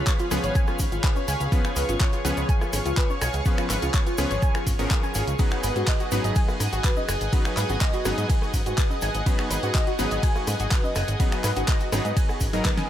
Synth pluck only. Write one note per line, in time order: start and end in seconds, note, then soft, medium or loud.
0.07 0.18 C#5 loud
0.19 0.26 F4 loud
0.44 0.54 C#5 medium
0.55 0.60 G#5 loud
0.68 0.74 F4 medium
0.92 1.02 F4 loud
1.04 1.14 B4 medium
1.16 1.23 C#5 medium
1.28 1.32 G#5 medium
1.52 1.59 F4 medium
1.65 1.71 F4 medium
1.76 1.83 B4 loud
1.89 1.99 F4 loud
2.01 2.11 C#5 loud
2.13 2.20 F4 loud
2.37 2.47 C#5 medium
2.49 2.53 G#5 loud
2.61 2.68 F4 medium
2.86 2.96 F4 loud
2.97 3.08 B4 medium
3.10 3.16 C#5 medium
3.22 3.26 G#5 medium
3.46 3.53 F4 medium
3.58 3.65 F4 medium
3.70 3.77 B4 loud
3.82 3.92 F4 loud
3.94 4.05 C#5 loud
4.07 4.13 F4 loud
4.31 4.41 C#5 medium
4.42 4.47 G#5 loud
4.55 4.62 F4 medium
4.79 4.86 C#5 medium
4.91 4.98 F4 medium
5.03 5.10 G#5 loud
5.15 5.26 G#4 medium
5.39 5.46 F#4 medium
5.52 5.58 F#4 medium
5.63 5.71 B4 loud
5.76 5.86 F#4 loud
5.88 5.98 D#5 loud
6.00 6.07 F#4 loud
6.24 6.34 D#5 medium
6.36 6.40 G#5 loud
6.48 6.55 F#4 medium
6.73 6.83 F#4 loud
6.84 6.95 B4 medium
6.97 7.04 D#5 medium
7.09 7.13 G#5 medium
7.33 7.40 F#4 medium
7.45 7.52 F#4 medium
7.57 7.64 B4 loud
7.69 7.79 F#4 loud
7.81 7.92 D#5 loud
7.94 8.00 F#4 loud
8.18 8.28 D#5 medium
8.30 8.34 G#5 loud
8.42 8.49 F#4 medium
8.66 8.76 F#4 loud
8.78 8.89 B4 medium
8.90 8.97 D#5 medium
9.02 9.06 G#5 medium
9.26 9.33 F#4 medium
9.39 9.46 F#4 medium
9.51 9.58 B4 loud
9.63 9.73 F#4 loud
9.75 9.85 D#5 loud
9.87 9.94 F#4 loud
10.11 10.21 D#5 medium
10.23 10.27 G#5 loud
10.36 10.42 F#4 medium
10.60 10.70 F#4 loud
10.72 10.82 B4 medium
10.84 10.91 D#5 medium
10.96 11.00 G#5 medium
11.20 11.27 F#4 medium
11.32 11.39 F#4 medium
11.44 11.51 B4 loud
11.56 11.67 F#4 loud
11.68 11.79 D#5 loud
11.81 11.87 F#4 loud
12.05 12.15 D#5 medium
12.17 12.21 G#5 loud
12.29 12.36 F#4 medium
12.53 12.63 D#5 medium
12.65 12.69 B4 loud
12.78 12.88 G#5 medium